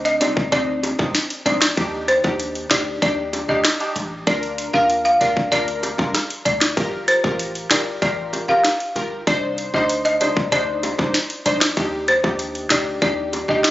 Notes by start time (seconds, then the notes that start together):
Already playing: D2 C4 D4 D#4
0.05 D#5, closed hi-hat
0.21 C2 C4 D4 D#4 D5, closed hi-hat, high bongo
0.37 kick
0.52 D2 C4 D4 D#4 D5, closed hi-hat, high bongo
0.83 closed hi-hat, high bongo
0.99 C2 C4 D4 D#4, kick, high bongo
1.15 snare, closed hi-hat
1.30 closed hi-hat
1.45 A#1 C4 D4 D#4 D5, closed hi-hat, low bongo
1.62 snare, clap
1.77 D#2 D4 D#4 G4, kick, closed hi-hat, high bongo
2.08 C5, closed hi-hat
2.24 D#2 D4 D#4 G4, kick, high bongo
2.40 closed hi-hat
2.55 closed hi-hat
2.71 D2 D4 D#4 G4 D5, snare, clap, closed hi-hat, high bongo
3.02 D#2 D4 D#4 G4 D5, kick, closed hi-hat, high bongo
3.33 closed hi-hat, high bongo
3.48 D2 D4 D#4 G4 D#5, high bongo
3.65 snare, clap, closed hi-hat
3.80 D4 D#4 G4, closed hi-hat
3.96 A1, closed hi-hat, low bongo
4.27 D2 D4 F4 A#4 D5, kick, closed hi-hat, high bongo
4.43 closed hi-hat
4.58 closed hi-hat
4.73 D#2 D4 F4 A#4 F5, high bongo
4.90 closed hi-hat
5.05 F5, closed hi-hat
5.20 D2 D4 F4 A#4 D5, closed hi-hat, high bongo
5.37 kick
5.51 D2 D4 F4 A#4 D5, closed hi-hat, high bongo
5.68 closed hi-hat
5.83 closed hi-hat, high bongo
5.98 C2 D4 F4 A#4, kick, high bongo
6.15 cross-stick, snare, closed hi-hat
6.30 closed hi-hat
6.45 D2 D5, closed hi-hat, low bongo
6.61 snare, clap
6.77 G1 F4 G4 A#4, kick, closed hi-hat, high bongo
7.08 C5, closed hi-hat
7.24 A1 F4 G4 A#4, kick, high bongo
7.39 closed hi-hat
7.55 closed hi-hat
7.71 G1 F4 G4 A#4 D5, snare, clap, closed hi-hat, high bongo
8.02 A1 F4 G4 A#4 D5, kick, closed hi-hat, high bongo
8.33 closed hi-hat, high bongo
8.48 G1 F4 G4 A#4 F5, high bongo
8.64 snare, clap, closed hi-hat
8.80 closed hi-hat
8.96 G1 F4 G4 A#4, closed hi-hat, low bongo
9.27 C2 D4 D#4 C5 D5, kick, closed hi-hat, high bongo
9.58 closed hi-hat
9.74 D2 D4 D#4 C5 D#5, high bongo
9.89 closed hi-hat
10.05 D#5, closed hi-hat
10.21 C2 D4 D#4 C5 D5, closed hi-hat, high bongo
10.37 kick
10.52 D2 D4 D#4 C5 D5, closed hi-hat, high bongo
10.83 closed hi-hat, high bongo
10.98 C2 D4 D#4 C5, kick, high bongo
11.14 snare, closed hi-hat
11.30 closed hi-hat
11.46 A#1 D4 D#4 C5 D5, closed hi-hat, low bongo
11.61 snare, clap
11.77 D#2 D4 D#4 G4, kick, closed hi-hat, high bongo
12.08 C5, closed hi-hat
12.24 D#2 D4 D#4 G4, kick, high bongo
12.39 closed hi-hat
12.55 closed hi-hat
12.70 D2 D4 D#4 G4 D5, snare, clap, closed hi-hat, high bongo
13.02 D#2 D4 D#4 G4 D5, kick, closed hi-hat, high bongo
13.33 closed hi-hat, high bongo
13.48 D2 D4 D#4 G4 D#5, high bongo
13.64 snare, clap, closed hi-hat